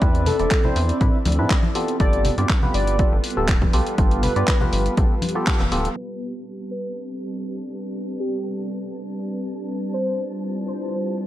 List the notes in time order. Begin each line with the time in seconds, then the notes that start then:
Already playing: C4 E4 A4 D5 E5 B5
0.02 E2 C4 D4 E4 B4, kick, closed hi-hat
0.15 closed hi-hat
0.26 A4, open hi-hat, low conga
0.39 E1 C4 D4 E4 D5, closed hi-hat
0.51 kick, clap, closed hi-hat
0.64 C4 D4 E4 C5, high conga, low conga
0.76 E2, open hi-hat
0.89 closed hi-hat
1.01 A2 C4 D4 E4 B4, kick, closed hi-hat
1.25 D2, open hi-hat, high conga
1.32 closed hi-hat
1.39 A2 C4 D4 E4 B4
1.50 kick, clap, closed hi-hat
1.63 high conga
1.75 G3 B3 F4 G4 A4 B4, open hi-hat
1.88 closed hi-hat
1.98 G1 B3 F4 G4 A4 D5, kick, closed hi-hat
2.09 A5
2.13 closed hi-hat
2.25 open hi-hat, low conga
2.38 G2 B3 F4 G4 D5, closed hi-hat
2.49 kick, clap, closed hi-hat
2.63 B3 F4 G4 B4, high conga, low conga
2.69 F5
2.74 G1 D5, open hi-hat
2.87 closed hi-hat
2.99 B3 F4 G4 A4, kick, closed hi-hat
3.12 G1
3.24 open hi-hat
3.30 closed hi-hat
3.37 D1 B3 F4 G4 A4
3.48 kick, clap, closed hi-hat
3.61 kick, high conga
3.73 B1 B3 F4 G4 A4, open hi-hat
3.87 closed hi-hat
3.98 G1 B3 F4 G4 A4, kick, closed hi-hat
4.11 closed hi-hat
4.23 B4, open hi-hat, low conga
4.36 G2 B3 F4 G4 D5, closed hi-hat
4.47 kick, clap, closed hi-hat
4.61 B3 F4 G4 B4, high conga, low conga
4.73 G1, open hi-hat
4.86 closed hi-hat
4.97 B1 B3 F4 G4 A4, kick, closed hi-hat
5.22 open hi-hat, high conga
5.29 closed hi-hat
5.35 B3 F4 G4 A4
5.47 kick, clap, closed hi-hat
5.60 F1, high conga
5.72 D1 B3 F4 G4 A4, open hi-hat
5.85 closed hi-hat
5.96 G3 C4 D4 A4 B4 A5, maracas
6.21 maracas
6.27 D5
6.47 maracas
6.55 B4
6.70 B4, maracas
6.96 maracas
7.20 maracas
7.33 maracas
7.45 maracas
7.70 maracas
7.83 maracas
7.95 maracas
8.20 G4, maracas
8.33 maracas
8.44 maracas
8.58 maracas
8.69 maracas
8.82 maracas
8.94 maracas
9.08 maracas
9.20 maracas
9.32 maracas
9.44 maracas
9.56 maracas
9.68 maracas
9.82 maracas
9.93 D4 E4 F4 C5, maracas
10.07 C5, maracas
10.18 maracas
10.30 F3, maracas
10.44 maracas
10.50 G5
10.56 maracas
10.68 C5, maracas
10.75 E5
10.81 maracas
10.93 maracas
11.05 maracas
11.18 maracas